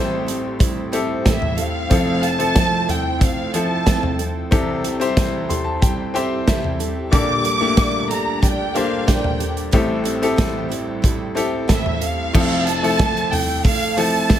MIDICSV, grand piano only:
0, 0, Header, 1, 2, 480
1, 0, Start_track
1, 0, Key_signature, -1, "major"
1, 0, Tempo, 651961
1, 1406, Time_signature, 4, 2, 24, 8
1, 10598, End_track
2, 0, Start_track
2, 0, Title_t, "Grand piano"
2, 0, Program_c, 0, 0
2, 0, Control_c, 0, 64, 127
2, 0, Note_on_c, 0, 33, 75
2, 0, Note_on_c, 0, 45, 76
2, 0, Note_on_c, 0, 60, 85
2, 0, Note_on_c, 0, 64, 72
2, 0, Note_on_c, 0, 67, 81
2, 0, Note_on_c, 0, 69, 93
2, 0, Note_on_c, 0, 72, 93
2, 546, Note_off_c, 0, 60, 0
2, 547, Note_off_c, 0, 64, 0
2, 549, Note_off_c, 0, 67, 0
2, 550, Note_off_c, 0, 72, 0
2, 681, Note_on_c, 0, 60, 79
2, 681, Note_on_c, 0, 64, 69
2, 690, Note_off_c, 0, 69, 0
2, 690, Note_on_c, 0, 67, 67
2, 690, Note_on_c, 0, 69, 86
2, 1285, Note_off_c, 0, 60, 0
2, 1285, Note_off_c, 0, 64, 0
2, 1290, Note_off_c, 0, 67, 0
2, 1290, Note_off_c, 0, 69, 0
2, 1375, Note_off_c, 0, 33, 0
2, 1375, Note_off_c, 0, 45, 0
2, 1398, Note_on_c, 0, 60, 73
2, 1401, Note_on_c, 0, 29, 58
2, 1403, Note_on_c, 0, 53, 62
2, 1404, Note_on_c, 0, 41, 56
2, 1409, Note_on_c, 0, 69, 73
2, 1415, Control_c, 0, 64, 0
2, 1557, Control_c, 0, 64, 127
2, 1703, Note_off_c, 0, 60, 0
2, 1706, Note_off_c, 0, 53, 0
2, 1708, Note_off_c, 0, 69, 0
2, 1758, Note_on_c, 0, 60, 76
2, 1762, Note_on_c, 0, 64, 61
2, 1765, Note_on_c, 0, 53, 60
2, 1769, Note_on_c, 0, 69, 75
2, 2464, Note_off_c, 0, 60, 0
2, 2466, Note_off_c, 0, 64, 0
2, 2467, Note_off_c, 0, 53, 0
2, 2469, Note_off_c, 0, 69, 0
2, 2602, Note_on_c, 0, 60, 64
2, 2605, Note_on_c, 0, 64, 59
2, 2607, Note_on_c, 0, 53, 64
2, 2616, Note_on_c, 0, 69, 73
2, 3206, Note_off_c, 0, 60, 0
2, 3207, Note_off_c, 0, 64, 0
2, 3208, Note_off_c, 0, 53, 0
2, 3213, Note_off_c, 0, 69, 0
2, 3294, Note_off_c, 0, 29, 0
2, 3296, Note_off_c, 0, 41, 0
2, 3320, Note_on_c, 0, 60, 82
2, 3323, Note_on_c, 0, 36, 69
2, 3324, Note_on_c, 0, 48, 71
2, 3324, Note_on_c, 0, 64, 74
2, 3327, Note_on_c, 0, 67, 77
2, 3330, Note_on_c, 0, 69, 97
2, 3337, Control_c, 0, 64, 0
2, 3467, Control_c, 0, 64, 127
2, 3624, Note_off_c, 0, 60, 0
2, 3626, Note_off_c, 0, 64, 0
2, 3627, Note_off_c, 0, 67, 0
2, 3629, Note_off_c, 0, 69, 0
2, 3679, Note_on_c, 0, 60, 87
2, 3683, Note_on_c, 0, 64, 76
2, 3688, Note_on_c, 0, 67, 80
2, 3692, Note_on_c, 0, 72, 94
2, 4044, Note_on_c, 0, 84, 67
2, 4156, Note_on_c, 0, 81, 67
2, 4157, Note_off_c, 0, 84, 0
2, 4272, Note_off_c, 0, 81, 0
2, 4283, Note_on_c, 0, 79, 69
2, 4385, Note_off_c, 0, 60, 0
2, 4387, Note_off_c, 0, 64, 0
2, 4389, Note_off_c, 0, 67, 0
2, 4391, Note_off_c, 0, 72, 0
2, 4508, Note_off_c, 0, 79, 0
2, 4520, Note_on_c, 0, 60, 86
2, 4524, Note_on_c, 0, 79, 67
2, 4525, Note_on_c, 0, 64, 73
2, 4526, Note_on_c, 0, 67, 82
2, 4533, Note_on_c, 0, 72, 91
2, 4749, Note_off_c, 0, 79, 0
2, 4766, Note_on_c, 0, 76, 69
2, 5124, Note_off_c, 0, 60, 0
2, 5127, Note_off_c, 0, 64, 0
2, 5128, Note_off_c, 0, 67, 0
2, 5131, Note_off_c, 0, 72, 0
2, 5216, Note_off_c, 0, 36, 0
2, 5216, Note_off_c, 0, 48, 0
2, 5217, Note_off_c, 0, 76, 0
2, 5237, Note_on_c, 0, 58, 74
2, 5240, Note_on_c, 0, 34, 67
2, 5240, Note_on_c, 0, 62, 70
2, 5241, Note_on_c, 0, 46, 59
2, 5243, Note_on_c, 0, 67, 66
2, 5248, Note_on_c, 0, 69, 75
2, 5255, Control_c, 0, 64, 0
2, 5388, Control_c, 0, 64, 127
2, 5543, Note_off_c, 0, 58, 0
2, 5544, Note_off_c, 0, 62, 0
2, 5546, Note_off_c, 0, 67, 0
2, 5548, Note_off_c, 0, 69, 0
2, 5599, Note_on_c, 0, 62, 68
2, 5600, Note_on_c, 0, 58, 75
2, 5607, Note_on_c, 0, 67, 66
2, 5608, Note_on_c, 0, 57, 86
2, 6305, Note_off_c, 0, 58, 0
2, 6305, Note_off_c, 0, 62, 0
2, 6308, Note_off_c, 0, 67, 0
2, 6309, Note_off_c, 0, 57, 0
2, 6443, Note_on_c, 0, 58, 70
2, 6449, Note_on_c, 0, 62, 66
2, 6449, Note_on_c, 0, 67, 64
2, 6452, Note_on_c, 0, 72, 81
2, 7046, Note_off_c, 0, 58, 0
2, 7049, Note_off_c, 0, 62, 0
2, 7049, Note_off_c, 0, 67, 0
2, 7051, Note_off_c, 0, 72, 0
2, 7134, Note_off_c, 0, 34, 0
2, 7134, Note_off_c, 0, 46, 0
2, 7163, Note_on_c, 0, 60, 85
2, 7166, Note_on_c, 0, 64, 80
2, 7167, Note_on_c, 0, 45, 71
2, 7168, Note_on_c, 0, 33, 78
2, 7170, Note_on_c, 0, 67, 80
2, 7172, Note_on_c, 0, 69, 86
2, 7175, Control_c, 0, 64, 0
2, 7292, Control_c, 0, 64, 127
2, 7465, Note_off_c, 0, 60, 0
2, 7467, Note_off_c, 0, 64, 0
2, 7469, Note_off_c, 0, 67, 0
2, 7470, Note_off_c, 0, 69, 0
2, 7523, Note_on_c, 0, 60, 83
2, 7527, Note_on_c, 0, 64, 81
2, 7531, Note_on_c, 0, 67, 80
2, 7533, Note_on_c, 0, 69, 100
2, 8227, Note_off_c, 0, 60, 0
2, 8229, Note_off_c, 0, 64, 0
2, 8231, Note_off_c, 0, 67, 0
2, 8231, Note_off_c, 0, 69, 0
2, 8358, Note_on_c, 0, 60, 80
2, 8359, Note_on_c, 0, 64, 74
2, 8365, Note_on_c, 0, 67, 76
2, 8369, Note_on_c, 0, 69, 90
2, 8964, Note_off_c, 0, 60, 0
2, 8964, Note_off_c, 0, 64, 0
2, 8968, Note_off_c, 0, 67, 0
2, 8969, Note_off_c, 0, 69, 0
2, 9058, Note_off_c, 0, 33, 0
2, 9058, Note_off_c, 0, 45, 0
2, 9081, Note_on_c, 0, 57, 76
2, 9084, Note_on_c, 0, 60, 68
2, 9087, Note_on_c, 0, 29, 62
2, 9088, Note_on_c, 0, 41, 63
2, 9090, Note_on_c, 0, 53, 68
2, 9093, Note_on_c, 0, 69, 84
2, 9096, Control_c, 0, 64, 0
2, 9222, Control_c, 0, 64, 127
2, 9385, Note_off_c, 0, 57, 0
2, 9386, Note_off_c, 0, 60, 0
2, 9389, Note_off_c, 0, 53, 0
2, 9391, Note_off_c, 0, 69, 0
2, 9443, Note_on_c, 0, 57, 76
2, 9445, Note_on_c, 0, 60, 63
2, 9447, Note_on_c, 0, 64, 66
2, 9449, Note_on_c, 0, 53, 67
2, 9454, Note_on_c, 0, 69, 86
2, 10147, Note_off_c, 0, 57, 0
2, 10148, Note_off_c, 0, 60, 0
2, 10149, Note_off_c, 0, 64, 0
2, 10150, Note_off_c, 0, 53, 0
2, 10152, Note_off_c, 0, 69, 0
2, 10281, Note_on_c, 0, 57, 70
2, 10286, Note_on_c, 0, 60, 64
2, 10289, Note_on_c, 0, 64, 62
2, 10290, Note_on_c, 0, 53, 67
2, 10295, Note_on_c, 0, 69, 75
2, 10598, Note_off_c, 0, 29, 0
2, 10598, Note_off_c, 0, 41, 0
2, 10598, Note_off_c, 0, 53, 0
2, 10598, Note_off_c, 0, 57, 0
2, 10598, Note_off_c, 0, 60, 0
2, 10598, Note_off_c, 0, 64, 0
2, 10598, Note_off_c, 0, 69, 0
2, 10598, End_track
0, 0, End_of_file